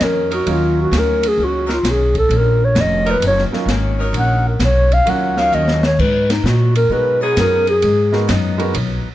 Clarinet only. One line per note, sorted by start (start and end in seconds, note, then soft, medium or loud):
0.03 0.32 A#4 medium
0.34 0.54 F#4 medium
0.52 0.80 F4 medium
0.81 1.00 F#4 medium
0.98 1.29 A#4 medium
1.28 1.45 G#4 medium
1.44 1.72 F#4 medium
1.73 1.92 F4 medium
1.91 2.17 G#4 medium
2.18 2.38 A4 medium
2.37 2.66 A#4 medium
2.65 2.82 C#5 medium
2.81 3.12 D#5 loud
3.11 3.24 B4 medium
3.27 3.44 C#5 medium
4.18 4.45 F#5 medium
4.49 4.65 A#4 medium
4.65 4.95 C#5 medium
4.93 5.11 F5 medium
5.09 5.40 F#5 medium
5.38 5.56 F5 medium
5.54 5.84 D#5 medium
5.86 6.02 C#5 medium
6.00 6.33 B4 medium
6.31 6.48 D#4 medium
6.47 6.75 F#4 medium
6.76 6.95 A#4 medium
6.93 7.22 B4 medium
7.23 7.41 G#4 medium
7.40 7.69 A#4 medium
7.69 8.26 G#4 medium